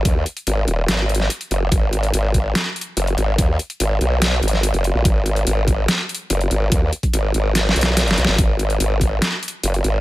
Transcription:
0.05 D#2, kick, closed hi-hat
0.26 closed hi-hat
0.37 closed hi-hat
0.47 G#1, closed hi-hat
0.68 D#1, closed hi-hat
0.88 G#1, snare, closed hi-hat
1.09 closed hi-hat
1.15 closed hi-hat
1.20 snare
1.30 closed hi-hat
1.41 closed hi-hat
1.51 F#1, closed hi-hat
1.72 G#1, kick, closed hi-hat
1.93 closed hi-hat
2.03 closed hi-hat
2.13 G#1, closed hi-hat
2.34 kick, closed hi-hat
2.55 snare, closed hi-hat
2.76 closed hi-hat
2.81 closed hi-hat
2.97 F#1, closed hi-hat
3.07 closed hi-hat
3.18 G#1, closed hi-hat
3.38 D#2, kick, closed hi-hat
3.59 closed hi-hat
3.70 closed hi-hat
3.80 G#1, closed hi-hat
4.01 B1, closed hi-hat
4.22 snare, closed hi-hat
4.43 G#1, closed hi-hat
4.48 closed hi-hat
4.53 snare
4.63 closed hi-hat
4.74 F#1, closed hi-hat
4.84 closed hi-hat
4.95 A#1
5.05 G#1, kick, closed hi-hat
5.26 closed hi-hat
5.36 closed hi-hat
5.47 G#1, closed hi-hat
5.68 kick, closed hi-hat
5.88 snare, closed hi-hat
6.09 closed hi-hat
6.15 closed hi-hat
6.30 F#1, closed hi-hat
6.41 closed hi-hat
6.51 G#1, closed hi-hat
6.72 D#2, kick, closed hi-hat
6.93 closed hi-hat
7.03 kick, closed hi-hat
7.13 G#1, closed hi-hat
7.34 G#1, closed hi-hat
7.55 snare, closed hi-hat
7.69 snare
7.76 B1, closed hi-hat
7.81 snare, closed hi-hat
7.97 snare, closed hi-hat
8.08 snare, closed hi-hat
8.18 B1, closed hi-hat
8.25 G#1, snare
8.38 G#1, kick, closed hi-hat
8.59 closed hi-hat
8.70 closed hi-hat
8.80 G#1, closed hi-hat
9.01 kick, closed hi-hat
9.22 snare, closed hi-hat
9.43 closed hi-hat
9.48 closed hi-hat
9.63 F#1, closed hi-hat
9.74 closed hi-hat
9.84 G#1, closed hi-hat

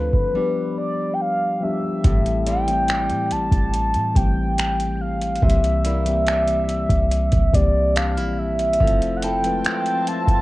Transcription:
Already playing: D2 D3 F3 A3 C4 D4 F4 A4 B4
0.13 G1, kick
0.34 F3 G3 B3 D4 G4
0.78 D5
1.14 G5
1.21 F5
1.61 F3 G3 B3 D4 G4 E5
2.03 A1 A2 E3 G3 A3 C4 G4, kick, closed hi-hat
2.26 closed hi-hat
2.46 G3 C4 E4 G5, closed hi-hat
2.67 E3 G3 A3 C4 E4, closed hi-hat
2.88 G3, finger snap, closed hi-hat
3.10 A2, closed hi-hat
3.31 A1 A5, closed hi-hat
3.52 A1, kick, closed hi-hat
3.74 closed hi-hat
3.94 A2, closed hi-hat
4.14 A1 E3 G3 A3 C4 G5, kick, closed hi-hat
4.18 G4
4.58 finger snap, closed hi-hat
4.80 closed hi-hat
5.01 F5
5.21 closed hi-hat
5.36 closed hi-hat
5.41 C2 C3 E3 G3 A#3 C4 G4 E5, kick
5.50 closed hi-hat
5.64 closed hi-hat
5.84 G3 A#3 E4, closed hi-hat
6.05 E3 G3 A#3 C4 G4, closed hi-hat
6.26 G3, finger snap, closed hi-hat
6.47 closed hi-hat
6.69 closed hi-hat
6.89 C2, kick, closed hi-hat
7.11 closed hi-hat
7.32 C2, kick, closed hi-hat
7.52 C2 E3 G3 A#3 C4 D5, kick, closed hi-hat
7.56 G4
7.96 D4 F5, finger snap, closed hi-hat
8.17 A#1 E4, closed hi-hat
8.38 E5
8.59 closed hi-hat
8.73 closed hi-hat
8.79 F1 F3 A3 C4 E4 A4 E5 A5, kick
8.87 closed hi-hat
9.02 closed hi-hat
9.17 F#5
9.22 C4 E4 A4 G5, closed hi-hat
9.42 F3 G#3 C4 E4 B4, closed hi-hat
9.50 A3
9.65 C4, finger snap, closed hi-hat
9.86 closed hi-hat
10.07 A5, closed hi-hat
10.28 F1, kick, closed hi-hat

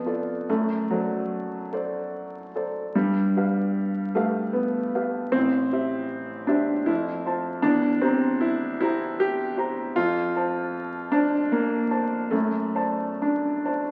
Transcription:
Already playing: F2 B3
0.06 F4 A4 D5
0.49 F#2 A3
0.90 F#3 A4 C5 D5
1.73 A4 C5 D5
2.55 A4 C5 D5
2.95 G2 G3
3.37 G4 B4 F5
4.15 A3 G4 B4 F5
4.53 B3
4.95 G4 B4 F5
5.32 A1 C4
5.73 G4 C5 E5
6.47 D4 G4 C5 E5
6.86 F2 E4
7.25 F4 C5 A5
7.62 E2 D4
8.02 C4 G4 C5 A#5
8.41 E4
8.81 E4 G4 C5 A#5
9.20 G4
9.58 G4 C5 A#5
9.96 F2 F4
10.36 C5 A5
11.12 D4 C5 A5
11.52 A#3
11.91 C5 A5
12.31 F#2 A3
12.75 C5 D5 A5
13.22 D4
13.65 C5 D5 A5

